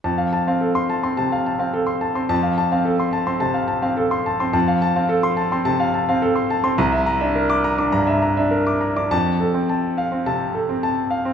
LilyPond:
\new Staff \with { instrumentName = "Grand piano" } { \time 4/4 \key f \major \tempo 4 = 106 << { f,8. c'8 c'''8 c'16 c8 r16 c'8 r8 c'16 | f,8. c'8 r8 c'16 c8 r16 c'8 r8 c'16 | f,8. c'8 c'''8 c'16 c8 r16 c'8 r8 c'16 | c,8. d'8 d'''8 d'16 g,8 r16 d'8 r8 d'16 |
<f, a''>8. c'8 r8 c'16 c8 r16 c'8 r8 c'16 | } \\ { a''16 f''16 a''16 f''16 a'8 a''16 c'''16 a''16 f''16 a''16 f''16 a'16 c'''16 a''16 c'''16 | a''16 f''16 a''16 f''16 a'16 c'''16 a''16 c'''16 a''16 f''16 a''16 f''16 a'16 c'''16 a''16 c'''16 | a''16 f''16 a''16 f''16 a'8 a''16 c'''16 a''16 f''16 a''16 f''16 a'16 c'''16 a''16 c'''16 | bes''16 e''16 bes''16 e''16 bes'8 bes''16 d'''16 bes''16 e''16 bes''16 e''16 bes'16 d'''16 bes''16 d'''16 |
r8 a'8 a''8 f''8 a''8 a'8 a''8 f''8 | } >> }